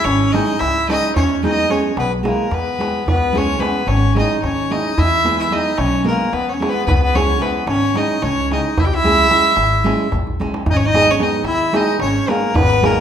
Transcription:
0.04 G#1 C#4 C#5, darbuka tek
0.20 darbuka tek
0.32 G#3 C#4 D#4 E4 G#4 D#5, darbuka tek
0.48 darbuka tek
0.59 C#2 E4 E5, darbuka tek
0.87 G#3 C#4 D#4 E4 G#4 D#5, darbuka tek
1.16 E2 C#4 C#5, darbuka dum
1.43 G#3 B3 D#4 E4 G#4 D#5, darbuka tek
1.57 darbuka tek
1.69 G#3 B3 C#4 E4 G#4 C#5, darbuka tek
1.84 darbuka tek
1.97 B1 B3 B4, darbuka tek
2.12 darbuka tek
2.23 G#3 A#3 B3 E4 G#4, darbuka tek
2.28 A#4
2.38 darbuka tek
2.51 E2 B3 B4, darbuka tek, darbuka dum
2.67 darbuka tek
2.79 G#3 B3 E4 G#4, darbuka tek
2.95 darbuka tek
3.06 C#2 B3 B4, darbuka dum
3.22 darbuka tek
3.32 G#3 C#4 E4 G#4, darbuka tek
3.37 C#4 C#5
3.50 darbuka tek
3.59 G#3 C#4 E4 G#4 B4, darbuka tek
3.65 B3
3.87 G#1 C#4 C#5, darbuka tek
4.14 G#3 C#4 E4 G#4 D#5, darbuka tek
4.20 D#4
4.31 darbuka tek
4.42 D#2 C#4 C#5, darbuka tek
4.70 G#3 C#4 E4 G#4 D#5, darbuka tek
4.74 D#4
4.98 E2 E4 E5, darbuka dum
5.12 darbuka tek
5.24 G#3 B3 E4 G#4, darbuka tek
5.38 E4 E5, darbuka tek
5.50 G#3 B3 E4 G#4 D#5, darbuka tek
5.55 D#4
5.77 B1 C#4 C#5, darbuka tek
5.93 darbuka tek
6.04 G#3 B3 E4 G#4 A#4
6.10 A#3
6.20 darbuka tek
6.33 E2 B3 B4, darbuka tek
6.49 C#5
6.54 C#4
6.60 G#3 B3 E4 G#4, darbuka tek
6.69 B3 B4
6.86 C#2 B3 B4, darbuka dum
6.95 B3 B4
7.02 B3 B4, darbuka tek
7.14 G#3 C#4 E4 G#4 C#5, darbuka tek
7.29 darbuka tek
7.39 G#3 C#4 E4 G#4 B4, darbuka tek
7.44 B3
7.67 G#1 C#4 C#5, darbuka tek
7.82 darbuka tek
7.94 G#3 C#4 E4 G#4 D#5, darbuka tek
7.99 D#4
8.09 darbuka tek
8.22 C#2 C#4 C#5, darbuka tek
8.50 G#3 C#4 E4 G#4 D#5, darbuka tek
8.55 D#4
8.78 C#2 E4 E5, darbuka dum
8.85 G4 G5
8.91 E4 E5, darbuka tek
9.04 G#3 C#4 E4 G#4, darbuka tek
9.31 G#3 C#4 E4 G#4, darbuka tek
9.44 darbuka tek
9.57 G#1, darbuka tek
9.72 darbuka tek
9.84 G#3 C#4 E4 G#4, darbuka tek
10.12 A#1, darbuka tek, darbuka dum
10.27 darbuka dum
10.40 G#3 C#4 E4 G#4, darbuka tek
10.54 darbuka tek
10.66 G#1 D#4, darbuka dum
10.71 C#4 D#5
10.77 C#5, darbuka tek
10.86 D#4 D#5
10.94 G#3 B3 D#4 G#4, darbuka tek
11.08 C#4 C#5, darbuka tek
11.19 G#3 B3 D#4 G#4 D#5, darbuka tek
11.33 darbuka tek
11.44 D#2 E4 E5, darbuka tek
11.73 G#3 B3 D#4 G#4 D#5, darbuka tek
11.87 darbuka tek
11.99 G#1 C#4 C#5, darbuka tek
12.14 darbuka tek
12.28 G#3 A#3 B3 D#4 G#4 A#4, darbuka tek
12.43 darbuka tek
12.54 G#1 B3 B4, darbuka dum
12.70 darbuka tek
12.81 G#3 A#3 B3 D#4 G#4 A#4, darbuka tek
12.96 darbuka tek

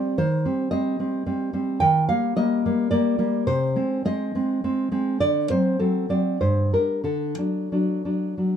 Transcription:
Already playing: G3 C4 D5
0.18 D#3 C5
0.45 G3 C4
0.71 G3 C4 D#5
0.99 G3 C4
1.26 G3 C4
1.53 G3 C4
1.80 D#3 G5
2.09 G3 A#3 F5
2.36 G3 A#3 D#5
2.66 G3 A#3
2.91 G3 A#3 D5
3.18 G3 A#3
3.47 C3 C5
3.76 G#3 C4
4.05 G#3 C4 D#5
4.35 G#3 C4
4.64 G#3 C4
4.92 G#3 C4
5.20 D3 D5
5.50 F#3 C4 C5
5.79 F#3 C4 A4
6.09 F#3 C4 D5
6.41 G2 C5
6.73 G3 D4 A#4
7.04 D3 A4
7.38 F#3 D4
7.72 F#3 D4
8.05 F#3 D4
8.38 F#3 D4

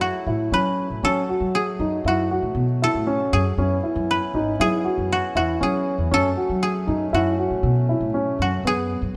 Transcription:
Already playing: F#2 F#3 A3 E4 G#4
0.01 F#4
0.27 A2 E4
0.52 F#3 C#4 B4
0.90 A2
1.03 F#3 C#4 F#4 A4
1.29 F#4
1.40 F#3
1.55 G#4
1.79 F#2 D#4
2.04 F#2 E4 F#4
2.31 F#4
2.42 A2
2.55 B2
2.82 E4 A4
2.94 A2
3.07 C#4
3.33 F#2 G#4
3.57 F#2 B3 C#4 E4
3.83 E4
3.96 F#2
4.11 B4
4.34 G#1 D#4
4.60 F#3 E4 G#4
4.85 F#4
4.98 F#2
5.12 F#4
5.35 E2 E4 F#4
5.61 F#3 C#4 G#4
5.98 E2
6.11 F#2 F#3 A3 C#4 A4
6.37 F#4
6.50 F#3
6.63 G#4
6.87 F#2 D#4
7.13 F#2 E4 F#4
7.38 F#4
7.50 A2
7.63 B2
7.89 E4
8.01 A2
8.14 C#4
8.39 F#2 F#4
8.64 F#2 B3 G#4
9.02 F#2

